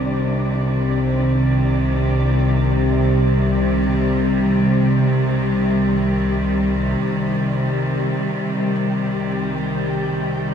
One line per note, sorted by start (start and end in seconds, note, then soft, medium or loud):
0.00 7.00 C2 medium
0.00 7.00 C3 medium
0.00 10.54 C3 medium
0.00 10.54 D#3 medium
0.00 10.54 G3 medium
0.00 7.03 D4 medium
0.00 7.03 D5 medium
7.02 10.54 C2 medium
7.02 10.54 C3 medium
7.02 10.54 G4 medium
7.02 10.54 G5 medium